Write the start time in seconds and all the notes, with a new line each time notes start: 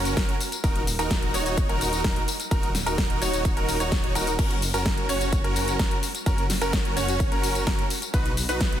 Already playing: F#1 C#4 F#4 A#4
0.05 closed hi-hat, tambourine
0.17 F#1 A#4, kick, snare, closed hi-hat, tambourine
0.29 closed hi-hat
0.41 open hi-hat, tambourine
0.52 closed hi-hat, tambourine
0.64 D#1 D#4 F#4 A#4, kick, closed hi-hat, tambourine
0.76 closed hi-hat
0.87 open hi-hat, tambourine
0.99 D#1 D#4 F#4 A#4, closed hi-hat, tambourine
1.11 kick, snare, closed hi-hat, tambourine
1.22 closed hi-hat
1.34 D#1 D#4 F#4 C#5, open hi-hat, tambourine
1.46 closed hi-hat, tambourine
1.58 kick, closed hi-hat, tambourine
1.69 D#1 D#4 F#4 A#4, closed hi-hat
1.81 open hi-hat, tambourine
1.93 closed hi-hat, tambourine
2.04 D#1 D#4 A#4, kick, snare, closed hi-hat, tambourine
2.16 closed hi-hat
2.28 open hi-hat, tambourine
2.40 closed hi-hat, tambourine
2.51 D#1 D#4 F#4 A#4, kick, closed hi-hat, tambourine
2.63 closed hi-hat
2.75 snare, open hi-hat, tambourine
2.86 D#1 D#4 F#4 A#4, closed hi-hat, tambourine
2.98 kick, snare, closed hi-hat, tambourine
3.10 closed hi-hat
3.22 D#1 D#4 F#4 C#5, open hi-hat, tambourine
3.33 closed hi-hat, tambourine
3.45 kick, closed hi-hat, tambourine
3.57 D#1 D#4 F#4 A#4, closed hi-hat
3.69 open hi-hat, tambourine
3.80 D#1 D#4 F#4 C#5, closed hi-hat, tambourine
3.92 kick, snare, closed hi-hat, tambourine
4.04 closed hi-hat
4.15 D#1 D#4 F#4 A#4, open hi-hat, tambourine
4.27 closed hi-hat, tambourine
4.39 F#1 C#4 F#4 A#4, kick, closed hi-hat, crash, tambourine
4.51 closed hi-hat
4.62 open hi-hat, tambourine
4.74 F#1 C#4 F#4 A#4, closed hi-hat, tambourine
4.86 kick, snare, closed hi-hat, tambourine
4.97 closed hi-hat
5.09 F#1 C#4 F#4 C#5, open hi-hat, tambourine
5.21 closed hi-hat, tambourine
5.33 kick, closed hi-hat, tambourine
5.44 F#1 C#4 F#4 A#4, closed hi-hat
5.56 open hi-hat, tambourine
5.68 closed hi-hat, tambourine
5.79 F#1 C#4 F#4 A#4, kick, snare, closed hi-hat, tambourine
5.91 closed hi-hat
6.03 open hi-hat, tambourine
6.15 closed hi-hat, tambourine
6.26 F#1 C#4 F#4 A#4, kick, closed hi-hat, tambourine
6.38 closed hi-hat
6.50 snare, open hi-hat, tambourine
6.61 F#1 C#4 F#4 A#4, closed hi-hat, tambourine
6.73 kick, snare, closed hi-hat, tambourine
6.85 closed hi-hat
6.97 F#1 C#4 F#4 C#5, open hi-hat, tambourine
7.08 closed hi-hat, tambourine
7.20 kick, closed hi-hat, tambourine
7.32 F#1 C#4 F#4 A#4, closed hi-hat
7.44 open hi-hat, tambourine
7.55 closed hi-hat, tambourine
7.67 F#1 C#4 F#4 A#4, kick, snare, closed hi-hat
7.79 closed hi-hat
7.90 open hi-hat, tambourine
8.02 closed hi-hat, tambourine
8.14 B1 D#4 F#4 B4, kick, closed hi-hat, tambourine
8.26 closed hi-hat
8.37 open hi-hat, tambourine
8.49 B1 D#4 F#4 B4, closed hi-hat, tambourine
8.61 kick, snare, closed hi-hat, tambourine
8.72 closed hi-hat